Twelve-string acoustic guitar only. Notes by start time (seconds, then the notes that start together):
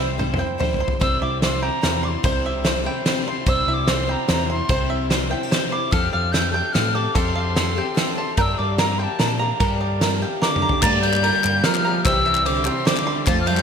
Already playing: C3 G3 C4 E4 C5
0.18 G3 C4 E4 C5
0.38 C4 E4 C5
0.58 G3 C4 E4 C5
0.79 C4 E4 C5
1.00 C3 G3 C4 E4 C5
1.42 G3 C4 E4 C5
1.62 C4 E4 C5
1.81 G3 C4 E4 C5
2.23 C3 G3 C4 E4 C5
2.64 G3 C4 E4 C5
2.84 C4 E4 C5
3.05 G3 C4 E4 C5
3.47 C3 G3 C4 E4 C5
3.87 G3 C4 E4 C5
4.07 C4 E4 C5
4.28 G3 C4 E4 C5
4.69 C3 G3 C4 E4 C5
5.11 G3 C4 E4 C5
5.30 C4 E4 C5
5.50 G3 C4 E4 C5
5.70 C4 E4 C5
5.91 F3 C4 G4 A4
6.33 F3 C4 G4 A4
6.51 C4 G4 A4
6.73 F3 C4 G4 A4
6.95 C4 G4 A4
7.15 F3 C4 G4 A4
7.56 F3 C4 G4 A4
7.76 C4 G4 A4
7.95 F3 C4 G4 A4
8.16 C4 G4 A4
8.37 G2 D3 G3 A#3 D4 G4
8.78 G3 A#3 D4 G4
9.19 G3 A#3 D4 G4
9.40 G3 A#3 D4 G4
9.60 G2 D3 G3 A#3 D4 G4
10.02 G3 A#3 D4 G4
10.22 G3 A#3 D4 G4
10.42 G3 A#3 D4 G4
10.82 G2 D3 G3 A#3 D4 G4
11.25 A#3 D4 G4
11.45 G3 A#3 D4 G4
11.65 G3 A#3 D4 G4
11.85 G3 A#3 D4 G4
12.05 C3 G3 C4 E4 G4
12.46 G3 C4 E4 G4
12.65 C4 E4 G4
12.86 G3 C4 E4 G4
13.26 F3 C4 F4 A4